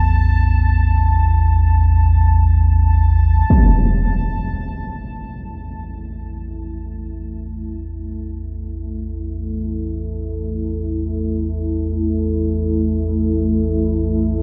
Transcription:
Already playing: A1 E2 A5
3.50 A1 E2 A3, impact
4.05 E4
7.72 A4

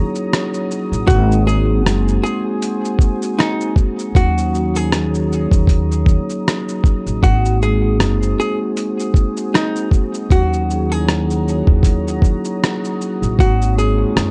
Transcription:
Already playing: F#3 A#3 C#4 D#4 E4 F#4 G#4 C#5 A#5 D#6
0.15 shaker
0.33 cross-stick, closed hi-hat, shaker
0.54 shaker
0.71 shaker
0.92 A1, shaker
1.07 G#1 G#3 A#3 C4 D#4 F#4 C5 G#5, kick, closed hi-hat, shaker
1.32 shaker
1.45 G#3 A#3 C4 D#4 F#4 G#4, shaker
1.65 G#3 A#3 C4 D#4 G#4
1.85 F#1, cross-stick, closed hi-hat, shaker
2.08 shaker
2.24 G#4, shaker
2.62 closed hi-hat, shaker
2.85 shaker
2.99 kick, shaker
3.22 shaker
3.39 D#4, cross-stick, closed hi-hat, shaker
3.61 shaker
3.76 kick, shaker
3.99 shaker
4.14 D#2 F#3 A#3 C#4 D#4 F#4 C#5 A#5 D#6, kick, closed hi-hat, shaker
4.38 shaker
4.52 F#3 A#3 C#4 D#4 F#4, shaker
4.76 F#3 A#3 C#4 D#4 G#4, shaker
4.92 cross-stick, closed hi-hat, shaker
5.15 shaker
5.33 shaker
5.51 D#2, kick, shaker
5.67 kick, closed hi-hat, shaker
5.92 shaker
6.06 kick, shaker
6.30 shaker
6.48 cross-stick, closed hi-hat, shaker
6.69 shaker
6.84 kick, shaker
7.07 A1, shaker
7.21 G#1 G#3 A#3 C4 D#4 F#4 C5 G#5, kick, closed hi-hat, shaker
7.46 shaker
7.60 G#3 A#3 C4 D#4 G#4, shaker
7.81 G#3 A#3 C4 D#4 G#4
8.00 F#1, cross-stick, closed hi-hat, shaker
8.23 shaker
8.40 G#4, shaker
8.77 closed hi-hat, shaker
9.00 shaker
9.14 kick, shaker
9.37 shaker
9.54 D#4, cross-stick, closed hi-hat, shaker
9.76 shaker
9.91 kick, shaker
10.14 shaker
10.30 D#2 F#3 A#3 C#4 D#4 F#4 C#5 A#5 D#6, kick, closed hi-hat, shaker
10.53 shaker
10.69 F#3 A#3 C#4 D#4 G#4, shaker
10.91 A#3 C#4 D#4 E4 G#4
10.97 F#3
11.09 cross-stick, closed hi-hat, shaker
11.31 shaker
11.48 shaker
11.67 D#2, kick
11.83 kick, closed hi-hat, shaker
12.08 shaker
12.22 kick, shaker
12.45 shaker
12.64 cross-stick, closed hi-hat, shaker
12.85 shaker
13.02 shaker
13.22 A1, shaker
13.38 G#1 G#3 A#3 C4 F#4 C5 G#5, kick, closed hi-hat, shaker
13.42 D#4 F#4
13.62 shaker
13.76 G#3 A#3 C4 D#4 G#4, shaker
14.00 G#3 A#3 C4 D#4 F4
14.10 F#4
14.16 F#1, cross-stick, closed hi-hat, shaker

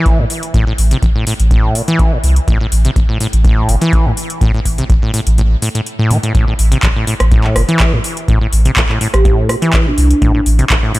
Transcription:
Already playing: E3
0.06 kick, closed hi-hat
0.19 A2
0.30 open hi-hat
0.43 closed hi-hat
0.54 A1 A2, kick, closed hi-hat
0.67 A2
0.78 A1, open hi-hat
0.91 C3, closed hi-hat
1.03 A1, kick, closed hi-hat
1.15 A2
1.27 A2, open hi-hat
1.40 A1, closed hi-hat
1.51 A2, kick, closed hi-hat
1.75 A#2, open hi-hat
1.88 E3, closed hi-hat
1.99 kick, closed hi-hat
2.12 A2
2.23 C2, open hi-hat
2.36 closed hi-hat
2.48 A1 A2, kick, closed hi-hat
2.61 A2
2.72 A1, open hi-hat
2.85 C3, closed hi-hat
2.96 A1, kick, closed hi-hat
3.09 A2
3.20 A2, open hi-hat
3.33 A1, closed hi-hat
3.44 A2, kick, closed hi-hat
3.69 G1 A#2, open hi-hat
3.81 E3, closed hi-hat
3.93 kick, closed hi-hat
4.06 A2
4.17 open hi-hat
4.30 closed hi-hat
4.41 A1 A2, kick, closed hi-hat
4.54 A2
4.65 A1, kick, open hi-hat
4.78 C3, closed hi-hat
4.90 A1, kick, closed hi-hat
5.02 A2
5.14 A2, open hi-hat
5.27 A1, closed hi-hat
5.38 A2, closed hi-hat
5.62 A2, open hi-hat
5.75 A2, closed hi-hat
5.86 closed hi-hat
5.99 A2
6.11 A2 E3, open hi-hat
6.23 A2, closed hi-hat
6.35 A1 A2, kick, closed hi-hat
6.48 A2
6.59 A1, open hi-hat
6.72 C3, closed hi-hat
6.83 A1, kick, clap, closed hi-hat
6.96 A2
7.07 A2, open hi-hat
7.20 A1, cross-stick, closed hi-hat
7.32 A2, kick, closed hi-hat
7.44 clap
7.56 G1 A#2, cross-stick, open hi-hat
7.69 E3, closed hi-hat
7.80 kick, clap, closed hi-hat
7.93 A2
8.04 open hi-hat
8.17 closed hi-hat
8.28 A1 A2, kick, closed hi-hat
8.41 A2
8.53 A1, open hi-hat
8.65 C3, closed hi-hat
8.76 A1, kick, clap, closed hi-hat
8.89 A2, clap
9.01 A2, open hi-hat
9.14 A1 G4, cross-stick, closed hi-hat
9.25 A2, kick, closed hi-hat
9.49 A#2, cross-stick, open hi-hat
9.62 E3, closed hi-hat
9.73 kick, clap, closed hi-hat
9.86 A2 D4
9.98 C2, open hi-hat
10.11 closed hi-hat
10.22 A1 A2, kick, closed hi-hat
10.35 A2
10.46 A1, open hi-hat
10.59 C3, closed hi-hat
10.70 A1, kick, clap, closed hi-hat
10.83 A2
10.94 A2, open hi-hat

